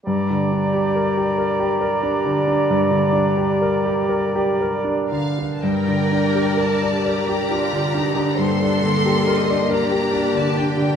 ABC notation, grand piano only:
X:1
M:12/8
L:1/16
Q:3/8=45
K:Gm
V:1 name="Grand piano"
G,, D, D G B G B G B D D, D G,, D, D G B G B G B D D, D | G,, D, D G B d B G D D, D D, G,, D D, G B d B G D D, D D, |]